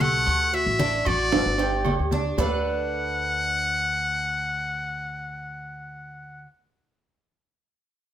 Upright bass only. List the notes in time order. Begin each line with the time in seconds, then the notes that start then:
Already playing: B1
0.27 D2
0.66 A1
1.06 A1
1.32 G1
1.46 G1
1.99 D2
2.38 D2